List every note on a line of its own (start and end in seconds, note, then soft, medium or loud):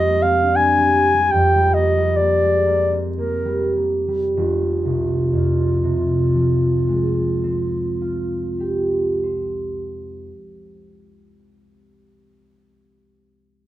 0.00 1.32 F2 soft
0.00 0.76 G3 soft
0.00 1.38 G#3 soft
0.00 0.23 C4 soft
0.00 0.24 D#5 medium
0.07 0.35 A#3 soft
0.22 0.58 C4 soft
0.22 0.57 F5 medium
0.42 0.71 D4 soft
0.56 0.93 C4 soft
0.56 1.33 G#5 medium
0.77 1.12 G3 soft
0.95 1.36 C4 soft
1.14 1.54 G3 soft
1.32 4.42 F2 soft
1.32 1.75 G5 medium
1.55 1.96 G3 soft
1.74 2.18 A#3 soft
1.74 2.18 D#5 medium
1.97 3.44 G3 soft
2.17 2.64 A#3 soft
2.17 3.01 D5 medium
2.41 2.83 G#3 soft
2.65 3.17 A#3 soft
2.91 3.37 C4 soft
3.18 3.75 A#3 soft
3.18 3.75 A#4 soft
3.45 4.07 G3 soft
3.76 4.41 A#3 soft
4.08 7.98 G3 soft
4.36 9.31 F1 soft
4.36 9.30 F4 soft
4.85 9.79 C2 soft
5.33 10.27 F2 soft
5.84 10.78 C3 soft
6.35 11.29 F3 soft
6.88 11.83 G#3 soft
7.43 12.38 C4 soft
8.01 12.39 F4 soft
8.60 12.38 G4 soft
9.23 12.38 C5 soft